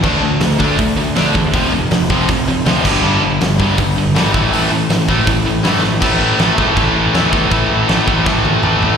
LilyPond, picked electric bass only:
\new Staff \with { instrumentName = "Picked electric bass" } { \clef bass \time 4/4 \key a \mixolydian \tempo 4 = 160 d,8 d,8 d,8 d,8 d,8 d,8 d,8 e,8 | f,,8 f,,8 f,,8 f,,8 f,,4 d,8 g,,8 | g,,8 g,,8 g,,8 g,,8 g,,8 g,,8 gis,,8 a,,8 | a,,8 a,,8 a,,8 a,,8 a,,4 g,8 a,,8 |
a,,8 a,,8 a,,8 cis,8 a,,8 a,,8 e,8 e,8 | a,,8 a,,8 a,,8 a,,8 a,8 a,,8 a,,8 a,,8 | }